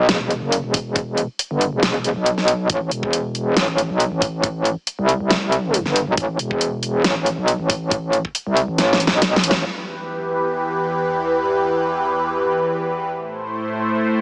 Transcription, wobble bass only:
0.09 0.40 E1 loud
0.42 0.62 F#1 loud
0.64 1.27 E1 loud
1.51 1.71 G1 loud
1.73 2.14 E1 loud
2.16 2.68 B1 loud
2.70 2.90 A1 loud
2.91 3.55 E1 loud
3.57 3.88 A1 loud
3.90 4.10 B1 loud
4.12 4.75 A1 loud
4.99 5.19 C2 loud
5.20 5.84 C2 loud
5.86 6.05 G1 loud
6.07 6.16 B1 loud
6.17 6.38 A1 loud
6.39 7.03 E1 medium
7.04 7.36 A1 loud
7.38 7.58 B1 loud
7.60 8.23 A1 loud
8.47 8.66 C2 loud
8.68 9.10 A1 loud
9.12 9.42 B1 loud
9.44 9.64 A1 medium

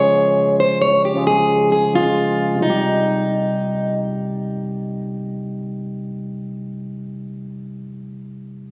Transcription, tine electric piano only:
0.00 1.14 C#3 loud
0.00 1.15 F3 medium
0.00 1.16 G#3 loud
0.00 1.17 F4 medium
0.00 1.18 G#4 loud
1.14 1.65 C#3 medium
1.14 1.66 F3 medium
1.14 1.66 G#3 medium
1.14 1.67 F4 medium
1.14 1.67 G#4 medium
1.93 2.37 C#3 medium
1.93 2.38 F3 medium
1.93 2.38 G#3 medium
1.93 2.39 F4 medium
1.93 2.39 G#4 medium
2.55 7.26 C3 medium
2.60 7.31 G3 medium
2.65 7.36 D#4 medium
2.70 7.41 G4 medium

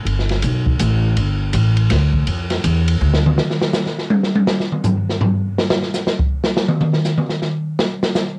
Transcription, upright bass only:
0.05 0.42 G1 medium
0.43 0.79 B1 medium
0.80 1.16 A1 medium
1.17 1.53 G1 medium
1.54 1.90 A1 loud
1.91 2.26 D2 medium
2.27 2.63 F2 medium
2.64 3.00 E2 loud
3.01 3.37 D2 loud

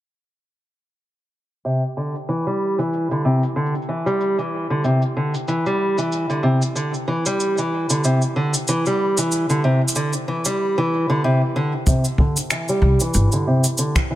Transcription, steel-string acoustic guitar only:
1.65 1.82 C3 medium
1.97 2.14 D3 medium
2.29 2.45 E3 medium
2.47 2.77 G3 medium
2.79 3.09 E3 medium
3.11 3.24 D3 medium
3.25 3.42 C3 medium
3.56 3.73 D3 medium
3.89 4.05 E3 medium
4.06 4.37 G3 medium
4.38 4.69 E3 medium
4.70 4.83 D3 medium
4.84 5.01 C3 medium
5.17 5.34 D3 medium
5.48 5.64 E3 medium
5.66 5.96 G3 medium
5.98 6.28 E3 medium
6.30 6.42 D3 medium
6.43 6.61 C3 medium
6.75 6.93 D3 medium
7.08 7.24 E3 medium
7.26 7.56 G3 medium
7.58 7.88 E3 medium
7.90 8.02 D3 medium
8.04 8.21 C3 medium
8.36 8.53 D3 medium
8.69 8.84 E3 medium
8.87 9.16 G3 medium
9.18 9.48 E3 medium
9.50 9.62 D3 medium
9.64 9.81 C3 medium
9.96 10.12 D3 medium
10.28 10.44 E3 medium
10.46 10.75 G3 medium
10.78 11.07 E3 medium
11.10 11.22 D3 medium
11.24 11.41 C3 medium
11.56 11.72 D3 medium
11.88 12.04 C3 medium
12.20 12.36 D3 medium
12.51 12.67 E3 medium
12.69 12.99 G3 medium
13.01 13.31 E3 medium
13.33 13.45 D3 medium
13.47 13.64 C3 medium
13.79 13.95 D3 medium
14.11 14.15 E3 medium

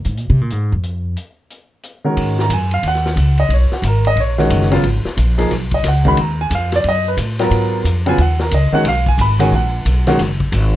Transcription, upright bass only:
0.05 0.19 G#2 medium
0.19 0.29 A#2 medium
0.30 0.41 C3 loud
0.41 0.52 A#2 medium
0.52 0.72 G#2 medium
0.72 1.14 F2 medium
2.17 2.49 G#2 medium
2.49 2.82 F#2 loud
2.83 3.15 D#2 medium
3.16 3.48 C#2 medium
3.49 3.69 B1 medium
3.70 muted upright bass stroke soft
3.82 4.15 G#1 loud
4.16 4.49 A#1 medium
4.50 4.82 F#1 loud
4.83 5.03 G#1 medium
5.05 muted upright bass stroke soft
5.17 5.50 A#1 loud
5.50 5.83 B1 medium
5.83 6.16 C#2 medium
6.17 6.50 D#2 medium
6.50 6.83 F2 loud
6.84 7.16 F#2 medium
7.17 7.50 A2 medium
7.51 7.83 G#2 medium
7.84 8.17 F2 medium
8.18 8.50 D#2 medium
8.51 8.71 C#2 medium
8.72 muted upright bass stroke soft
8.84 9.17 B1 medium
9.18 9.50 G#1 medium
9.51 9.84 A#1 medium
9.85 10.18 B1 medium
10.19 10.51 F#1 medium
10.52 10.76 G#1 loud

